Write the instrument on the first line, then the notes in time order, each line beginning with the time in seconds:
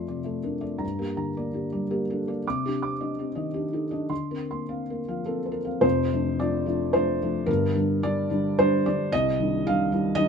felt piano
Already playing: F2 F3 A3 A4 D5 C6
0.08 C3 D5
0.24 A3 A4
0.43 D4 A#4
0.61 A3 D5
0.78 G2 A#5
0.99 A#3 G4
1.17 D3 A#5
1.37 A#3 D5
1.53 D3 G4
1.72 G3 D5
1.91 A#3 G4
2.10 D4 A4
2.27 A#3 D5
2.47 C3 D6
2.65 D4 G4
2.82 C4 D6
3.00 D4 D#5
3.19 C4 G4
3.35 D#3 D#5
3.54 D4 G4
3.73 D#4 A4
3.91 D4 D#5
4.09 D3 C6
4.31 C4 A#4
4.51 A#3 C6
4.69 C4 F5
4.90 A#3 A#4
5.08 F3 F5
5.26 C4 A4 A#4
5.46 C5
5.52 A#4
5.65 C4 F5
5.81 F1 F2 C5
6.12 F3 A3 D4
6.40 F3 A3 D4 D5
6.66 F3 A3 D4
6.93 F3 A3 D4 C5
7.22 F3 A3 D4
7.46 G1 G2 A#4
7.75 D3 G3 D4
8.03 D3 G3 D4 D5
8.30 D3 G3 D4
8.59 D3 G3 D4 C5
8.86 D3 G3 D4 D5
9.12 C2 D#5
9.40 D#3 G3 D4
9.66 D#3 G3 D4 F5
9.92 D#3 G3 D4
10.15 D#3 G3 D4 D#5